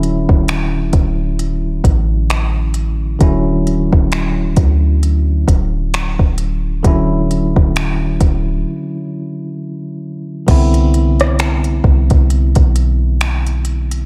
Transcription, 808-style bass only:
Already playing: D1
0.29 D1
0.93 D1
1.84 A1
3.21 D1
3.93 D1
4.57 D2
5.48 D1
6.19 D1
6.84 D1
7.56 D1
8.21 D1
10.48 C2
11.84 C2
12.11 C2
12.56 B1

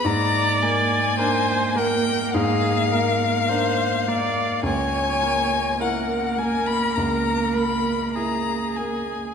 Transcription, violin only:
0.06 A#5
0.62 G#5
1.78 G5
2.34 F5
4.64 G#5
5.81 F#5
6.38 G#5
6.66 B5
6.95 A#5
7.53 B5
8.14 A#5
8.76 G#5

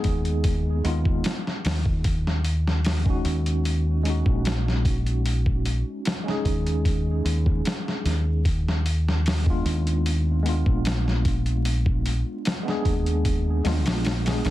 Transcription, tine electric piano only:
Already playing: G#3 B3 D#4 G#4
0.84 G#3 B3 D#4 F4
3.04 G#3 C#4
3.08 D#4 F#4
4.03 G#3 C#4
4.07 D#4 F#4
6.24 G#3 C#4 D#4
6.30 G#4
9.44 G#3 B3
9.48 D4 F4
10.43 G#3 B3
10.47 D4 F4
12.63 G#3 B3
12.67 D4 G#4
13.64 G#3 B3 D4 F4
14.25 G#3 B3 D4 G#4

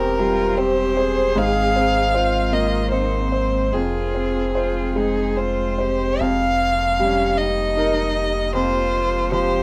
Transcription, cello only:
Already playing: G4
0.19 F4
0.58 G4
0.97 G#4
2.15 F4
2.92 D#4
3.32 C4
3.72 F4
4.54 F4
4.97 D#4
5.38 F4
5.80 G4
7.01 C#4
7.39 D#4
8.55 F4
9.32 G4

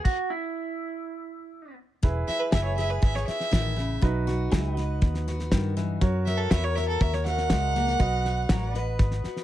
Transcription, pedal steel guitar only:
2.52 G#4 B4 E5
4.52 G#4 B4 E5
4.74 F#4 D#5
6.51 F#4 B4 C#5
6.73 A#4
8.51 F#4 A#4 C#5
8.72 B4
8.78 D#5

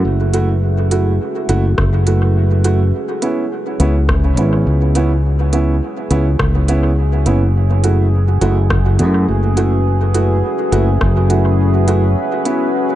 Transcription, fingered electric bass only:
0.05 F#1
1.49 F#1
1.78 F#1
3.80 C#2
4.38 G#1
4.67 C#2
6.11 C#2
6.39 C#2
7.26 F#1
8.41 F#1
8.99 F#2
9.28 F#1
10.72 F#1
11.01 F#1

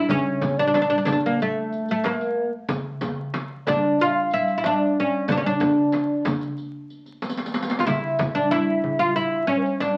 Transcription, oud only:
Already playing: E4
0.10 C#4
0.59 D4
0.67 D4
0.75 D4
0.82 D4
0.90 D4
0.98 D4
1.05 D4
1.12 D4
1.26 A#3
1.42 A3
1.91 A3
2.06 A#3
3.68 D4
4.01 F4
4.34 E4
4.58 E4
4.66 D4
5.00 C#4
5.32 D4
5.37 C#4
5.46 D4
7.80 F4
7.87 E4
8.35 D4
8.51 E4
8.99 F4
9.16 E4
9.47 C#4
9.80 D4

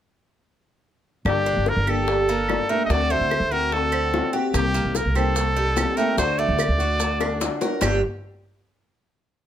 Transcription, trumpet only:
1.28 G4
1.69 A#4
1.90 A4
2.70 A#4
2.85 D#5
2.91 D5
3.11 C5
3.52 A#4
3.73 A4
4.56 G4
4.96 A#4
5.16 A4
5.97 A#4
6.18 C5
6.39 D5
7.83 G5

